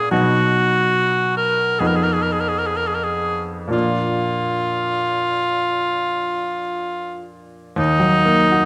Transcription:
Already playing: A#2 G#3 B3 D4 G#4
0.11 B2 F#3 B3 D#4 F#4
1.37 A#4
1.79 F2 F3 B3 D#4 G#4
1.87 A#4
1.96 G#4
2.03 A#4
2.13 G#4
2.22 A#4
2.32 G#4
2.41 A#4
2.48 G#4
2.59 A#4
2.66 G#4
2.76 A#4
2.87 G#4
2.94 A#4
3.04 G#4
3.68 A#2 F3 A#3 D4
3.73 F4
7.76 D#2 D#4
8.00 F#3
8.26 A#3
8.52 F#4

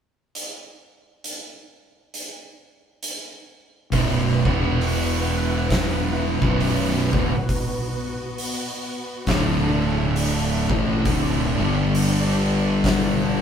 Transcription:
0.35 closed hi-hat
1.24 closed hi-hat
2.14 closed hi-hat
3.03 closed hi-hat
3.91 B0 B1 F#2 B2 B3 F#4 B4, kick, open hi-hat
4.44 E1 E2 B2 E3 E4 F#5, kick
4.81 open hi-hat
5.70 kick, snare, open hi-hat
6.41 B0 B1 F#2 B2 B3 F#4, kick
6.60 open hi-hat
6.89 snare
7.13 D1 D2 A2, kick
7.49 kick, open hi-hat
8.38 open hi-hat
9.27 D1 D2 A2 D3 D4 A4 E5, kick, snare, open hi-hat
10.16 open hi-hat
10.69 A1 A2 E3 A3 B3 F#4 B4, kick
11.04 D1 D2 A2 D3 D4 A4 E5, kick, open hi-hat
11.58 G1 G2 D3 G3
11.95 open hi-hat
12.84 kick, snare, open hi-hat

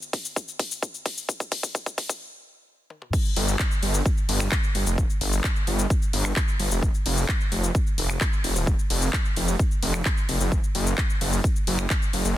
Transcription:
0.02 shaker
0.13 kick, open hi-hat
0.25 shaker
0.36 kick, shaker
0.48 shaker
0.59 kick, open hi-hat
0.71 shaker
0.83 kick, shaker
0.94 shaker
1.06 kick, open hi-hat
1.18 shaker
1.29 kick, shaker
1.40 kick, shaker
1.52 kick, open hi-hat
1.63 kick, shaker
1.75 kick, shaker
1.86 kick, shaker
1.98 kick, open hi-hat
2.09 kick, shaker
2.90 high tom
3.02 mid tom
3.13 kick, crash, shaker
3.25 shaker
3.36 G1, open hi-hat
3.48 shaker
3.59 kick, clap, shaker
3.71 shaker
3.83 G1, open hi-hat
3.94 shaker
4.06 kick, shaker
4.17 shaker
4.29 G1, open hi-hat
4.40 finger snap, shaker
4.52 kick, clap, shaker
4.64 shaker
4.75 G1, open hi-hat
4.86 F1, shaker
4.98 kick, shaker
5.10 shaker
5.21 G1, open hi-hat
5.33 shaker
5.44 kick, clap, shaker
5.56 shaker
5.67 G1, open hi-hat
5.79 shaker
5.90 kick, shaker
6.02 shaker
6.13 G1, open hi-hat
6.25 finger snap, shaker
6.36 kick, clap, shaker
6.48 shaker
6.60 G1, open hi-hat
6.71 F1, shaker
6.83 kick, shaker
6.94 shaker
7.06 F1, open hi-hat
7.18 shaker
7.29 kick, clap, shaker
7.41 shaker
7.52 F1, open hi-hat
7.64 shaker
7.75 kick, shaker
7.87 shaker
7.98 F1, open hi-hat
8.10 finger snap, shaker
8.21 kick, clap, shaker
8.33 shaker
8.44 F1, open hi-hat
8.56 D#1, shaker
8.67 kick, shaker
8.79 shaker
8.90 F1, open hi-hat
9.02 shaker
9.13 kick, clap, shaker
9.25 shaker
9.36 F1, open hi-hat
9.48 shaker
9.59 kick, shaker
9.71 shaker
9.83 F1, open hi-hat
9.94 finger snap, shaker
10.05 kick, clap, shaker
10.17 shaker
10.29 F1, open hi-hat
10.40 F#1, shaker
10.52 kick, shaker
10.64 shaker
10.75 F#1, open hi-hat
10.87 shaker
10.98 kick, clap, shaker
11.10 shaker
11.21 F#1, open hi-hat
11.33 shaker
11.44 kick, shaker
11.56 shaker
11.67 F#1, open hi-hat
11.79 finger snap, shaker
11.90 kick, clap, shaker
12.02 shaker
12.13 F#1, open hi-hat
12.25 F#1, shaker

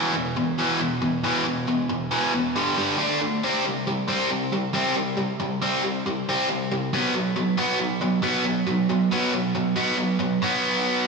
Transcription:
Already playing: E2 B2 E3
0.13 E2 B2
0.37 E2 B2
0.58 E2 B2 E3
0.80 E2 B2
1.02 E2 B2
1.24 E2 B2 E3
1.45 E2 B2
1.68 E2 B2
1.90 E2 B2
2.11 E2 B2 E3
2.34 E2 B2
2.56 G2 D3 G3
2.77 G2 D3 G3
2.97 D3 A3 D4
3.21 D3 A3
3.43 C3 G3 C4
3.65 C3 G3
3.87 C3 G3
4.08 C3 G3 C4
4.30 C3 G3
4.53 C3 G3
4.74 C3 G3 C4
4.96 C3 G3
5.17 C3 G3
5.40 C3 G3
5.62 C3 G3 C4
5.83 C3 G3
6.06 C3 G3
6.29 C3 G3 C4
6.49 C3 G3
6.72 C3 G3
6.93 B2 F#3 B3
7.15 B2 F#3
7.36 B2 F#3
7.57 B2 F#3 B3
7.79 B2 F#3
8.01 B2 F#3
8.22 B2 F#3 B3
8.45 B2 F#3
8.67 B2 F#3
8.90 B2 F#3
9.12 B2 F#3 B3
9.33 B2 F#3
9.55 B2 F#3
9.76 B2 F#3 B3
9.98 B2 F#3
10.19 B2 F#3
10.42 B2 F#3 B3

